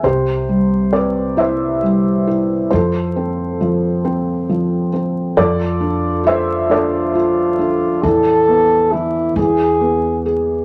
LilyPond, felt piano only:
<<
  \new Staff \with { instrumentName = "Felt piano" } { \time 6/8 \key c \major \tempo 4. = 45 << { c''4 d''8 e''4. | c''2~ c''8 r8 | d''4 e''8 d''4.~ | d''2~ d''8 r8 | } \\ { g'4 b'8 c''4. | a'2~ a'8 r8 | a'4 c''8 a'4.~ | a'4. r4. | } >> }
  \new Staff \with { instrumentName = "Felt piano" } { \time 6/8 \key c \major c8 g8 c'8 e'8 g8 e'8 | f8 c'8 f8 c'8 f8 c'8 | f8 d'8 f'8 d'8 f'8 d'8 | e8 b8 e8 e8 b8 gis'8 | }
>>